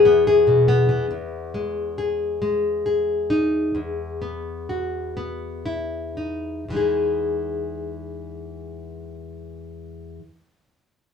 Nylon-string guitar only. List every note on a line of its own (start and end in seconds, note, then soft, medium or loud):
0.00 1.09 E2 medium
0.00 0.88 E3 medium
0.00 0.26 G#4 medium
0.05 0.67 B3 medium
0.27 1.07 G#4 medium
0.47 0.90 B2 medium
0.68 3.30 B3 medium
0.89 1.05 E3 medium
1.11 3.74 E2 medium
1.54 2.41 G#3 soft
1.98 2.85 G#4 soft
2.42 4.21 G#3 soft
2.86 4.69 G#4 soft
3.30 3.78 D#4 medium
3.75 6.67 E2 medium
4.22 5.16 B3 soft
4.69 5.65 F#4 soft
5.17 6.63 B3 soft
5.66 6.76 E4 soft
6.17 6.63 D#4 soft
6.68 10.18 E2 soft
6.68 10.20 E3 soft
6.73 10.23 G#3 soft
6.73 10.24 D#4 soft
6.73 10.26 G#4 soft